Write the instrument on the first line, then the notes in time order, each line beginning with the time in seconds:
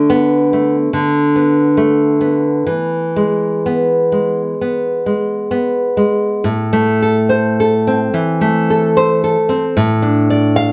nylon-string guitar
Already playing: D3 A3
0.10 B3
0.53 A3
0.93 D3
1.36 B3
1.77 A3
2.21 B3
2.66 E3
3.16 G#3
3.66 B3
4.12 G#3
4.61 B3
5.06 G#3
5.51 B3
5.97 G#3
6.44 A2
6.73 A3
7.02 A4
7.29 C5
7.60 A4
7.87 C4
8.14 E3
8.41 A3
8.70 A4
8.97 C5
9.24 A4
9.49 C4
9.77 A2
10.02 D4
10.30 D5
10.56 F5